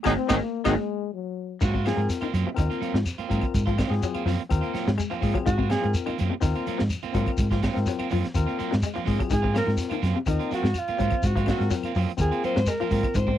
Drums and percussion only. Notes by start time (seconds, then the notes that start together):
0.04 kick, snare, high conga, claves, shekere
0.29 kick, snare, high conga, claves, shekere
0.65 kick, snare, high conga, claves, shekere
1.61 kick, crash, shekere
1.74 kick
1.85 snare, closed hi-hat, claves, shekere
1.99 closed hi-hat
2.09 snare, closed hi-hat, shekere
2.22 closed hi-hat, claves
2.34 closed hi-hat, shekere
2.57 kick, closed hi-hat, claves, shekere
2.71 closed hi-hat
2.82 closed hi-hat, shekere
2.95 snare
3.06 snare, closed hi-hat, claves, shekere
3.19 closed hi-hat
3.31 kick, closed hi-hat, shekere
3.41 kick, closed hi-hat, claves
3.54 kick, closed hi-hat, shekere
3.67 kick, closed hi-hat
3.78 kick, snare, closed hi-hat, claves, shekere
3.92 snare, closed hi-hat
4.03 closed hi-hat, shekere
4.15 closed hi-hat, claves
4.27 snare, open hi-hat, shekere
4.39 closed hi-hat
4.50 kick, closed hi-hat, claves, shekere
4.63 closed hi-hat
4.75 snare, closed hi-hat, shekere
4.88 snare
4.98 closed hi-hat, claves, shekere
5.12 closed hi-hat
5.23 kick, open hi-hat, shekere
5.35 kick, closed hi-hat, claves
5.46 kick, closed hi-hat, shekere
5.59 kick
5.70 snare, closed hi-hat, claves, shekere
5.83 closed hi-hat
5.94 closed hi-hat, shekere
6.07 closed hi-hat, claves
6.19 closed hi-hat, shekere
6.42 kick, snare, closed hi-hat, claves, shekere
6.55 closed hi-hat
6.66 closed hi-hat, shekere
6.79 snare
6.90 closed hi-hat, claves, shekere
7.03 closed hi-hat
7.14 kick, closed hi-hat, shekere
7.26 kick, closed hi-hat, claves
7.37 kick, closed hi-hat, shekere
7.51 kick, snare, closed hi-hat
7.62 kick, snare, closed hi-hat, claves, shekere
7.76 snare, closed hi-hat
7.86 snare, closed hi-hat, shekere
8.00 closed hi-hat, claves
8.10 open hi-hat, shekere
8.24 snare, closed hi-hat
8.35 kick, closed hi-hat, claves, shekere
8.49 closed hi-hat
8.59 closed hi-hat, shekere
8.72 snare
8.82 closed hi-hat, claves, shekere
8.95 closed hi-hat
9.07 kick, open hi-hat, shekere
9.20 kick, closed hi-hat, claves
9.30 kick, closed hi-hat, shekere
9.44 kick
9.55 snare, closed hi-hat, claves, shekere
9.68 snare, closed hi-hat
9.77 snare, closed hi-hat, shekere
9.91 closed hi-hat, claves
10.02 snare, closed hi-hat, shekere
10.26 kick, closed hi-hat, claves, shekere
10.40 closed hi-hat
10.51 snare, closed hi-hat, shekere
10.65 snare
10.74 closed hi-hat, claves, shekere
10.88 closed hi-hat
10.98 kick, closed hi-hat, shekere
11.11 kick, closed hi-hat, claves
11.23 kick, closed hi-hat, shekere
11.36 kick, closed hi-hat
11.46 kick, snare, closed hi-hat, claves, shekere
11.61 snare, closed hi-hat
11.71 snare, closed hi-hat, shekere
11.84 closed hi-hat, claves
11.95 open hi-hat, shekere
12.09 closed hi-hat
12.18 kick, closed hi-hat, claves, shekere
12.32 closed hi-hat
12.43 closed hi-hat, shekere
12.56 snare
12.66 snare, closed hi-hat, claves, shekere
12.80 closed hi-hat
12.90 kick, open hi-hat, shekere
13.03 kick, closed hi-hat, claves
13.14 kick, closed hi-hat, shekere
13.27 kick